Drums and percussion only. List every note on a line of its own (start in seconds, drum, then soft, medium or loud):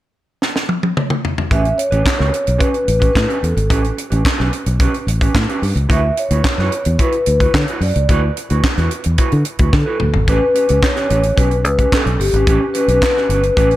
0.42 snare medium
0.56 snare medium
0.69 high tom medium
0.83 high tom medium
0.97 mid tom medium
1.10 mid tom medium
1.25 floor tom medium
1.38 floor tom medium
1.51 kick loud
1.51 closed hi-hat medium
1.65 closed hi-hat soft
1.79 closed hi-hat medium
1.92 closed hi-hat soft
2.06 kick loud
2.06 snare medium
2.06 clap medium
2.20 snare soft
2.34 closed hi-hat medium
2.47 closed hi-hat soft
2.60 kick loud
2.60 closed hi-hat medium
2.74 closed hi-hat soft
2.88 closed hi-hat medium
3.02 kick medium
3.02 closed hi-hat soft
3.15 kick loud
3.15 snare loud
3.15 clap medium
3.30 closed hi-hat soft
3.44 closed hi-hat soft
3.57 closed hi-hat soft
3.70 kick loud
3.70 closed hi-hat medium
3.84 closed hi-hat soft
3.98 closed hi-hat medium
4.11 closed hi-hat soft
4.25 kick loud
4.25 snare loud
4.25 clap medium
4.40 snare soft
4.53 closed hi-hat medium
4.66 closed hi-hat soft
4.80 kick loud
4.80 closed hi-hat medium
4.94 closed hi-hat soft
5.08 closed hi-hat medium
5.21 kick medium
5.21 closed hi-hat soft
5.35 kick loud
5.35 snare loud
5.35 clap loud
5.49 closed hi-hat soft
5.63 open hi-hat medium
5.77 closed hi-hat soft
5.90 kick loud
5.90 closed hi-hat medium
6.17 closed hi-hat medium
6.31 closed hi-hat soft
6.44 kick loud
6.44 snare loud
6.44 clap medium
6.59 snare soft
6.72 closed hi-hat medium
6.85 closed hi-hat soft
6.99 kick loud
6.99 closed hi-hat medium
7.12 closed hi-hat soft
7.26 closed hi-hat medium
7.40 kick medium
7.40 closed hi-hat soft
7.54 kick loud
7.54 snare loud
7.54 clap medium
7.68 closed hi-hat soft
7.81 open hi-hat medium
7.95 closed hi-hat soft
8.09 kick loud
8.09 closed hi-hat medium
8.37 closed hi-hat medium
8.50 closed hi-hat soft
8.64 kick loud
8.64 snare loud
8.64 clap medium
8.77 snare soft
8.77 closed hi-hat soft
8.91 closed hi-hat medium
9.04 closed hi-hat soft
9.18 kick loud
9.18 closed hi-hat medium
9.32 closed hi-hat soft
9.45 closed hi-hat medium
9.59 kick medium
9.59 closed hi-hat soft
9.73 kick loud
9.73 snare medium
10.00 mid tom medium
10.14 floor tom medium
10.28 kick loud
10.28 closed hi-hat medium
10.55 closed hi-hat medium
10.69 closed hi-hat soft
10.83 kick loud
10.83 snare loud
10.83 clap medium
10.96 snare soft
10.96 closed hi-hat soft
11.10 closed hi-hat medium
11.23 closed hi-hat soft
11.38 kick loud
11.38 closed hi-hat medium
11.51 closed hi-hat soft
11.65 closed hi-hat medium
11.79 kick medium
11.79 closed hi-hat soft
11.92 kick loud
11.92 snare loud
11.92 clap medium
12.07 closed hi-hat soft
12.21 open hi-hat medium
12.34 closed hi-hat soft
12.47 kick loud
12.47 closed hi-hat medium
12.75 closed hi-hat medium
12.88 closed hi-hat soft
13.02 kick loud
13.02 snare loud
13.02 clap medium
13.17 snare soft
13.30 closed hi-hat medium
13.43 closed hi-hat soft
13.57 kick loud
13.57 closed hi-hat medium
13.71 closed hi-hat soft